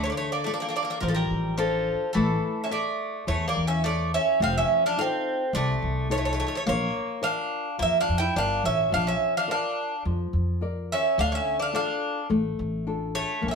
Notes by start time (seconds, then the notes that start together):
Already playing: D3
0.04 A3 C#5
0.10 A#3 D5
0.17 A3 C#5
0.32 A#3 D5
0.44 A3 D4 F4 A4 D5
0.54 A#3 D5
0.60 A#3 D5
0.69 A#3 D5
0.76 A#3 D5
0.83 A#3 D5
0.90 A#3 D5
1.00 A1 F3 A#4
1.08 F3 A4
1.15 G3 A#4
1.30 A1
1.58 F3 D4 F4 A4
2.13 A1 E3 A3 A4
2.64 C#4 E5
2.70 A3 E4 A4 D5 E5
3.27 E2 E3 A3 C#5
3.48 A#3 D5
3.56 E2
3.67 C#4 E5
3.84 A3 E4 A4 C#5 D5
4.14 C#4 E5
4.40 F1 F3 C4 F5
4.58 C#4 E5
4.86 D4 F5
4.97 D#4 F4 A4 F5
5.01 C4
5.53 C2 C3 A3 D5
5.82 C2
6.09 A3 D#4 F4 A4 C#5
6.18 A3 C#5
6.25 A3 C#5
6.33 A3 C#5
6.40 A3 C#5
6.47 A3 C#5
6.55 A3 C#5
6.66 A#1 A#3 C#5
7.21 D4 F4 A#4 D5 F5
7.78 F2 F3 A#3
7.83 E5
8.01 D4 F5
8.09 F2
8.18 E4 G5
8.36 G1 D4 F4 A#4 D5 F5
8.64 A1 C#4 E5
8.90 A#1 F3 F5
8.94 D4
9.07 C#4 E5
9.37 D4 F5
9.48 D4 F4 A#4 D5 F5
10.05 F2 F3
10.33 F2
10.61 F4 A#4 D5
10.92 C#4 E5
11.18 D2 D3 D4 F5
11.32 C#4 E5
11.60 D4 F5
11.73 D4 F4 A4 F5
12.30 A1 A3
12.59 A1
12.87 D4 F4 A4
13.15 A3 C#5
13.41 A#1 A#3
13.48 C#4 E5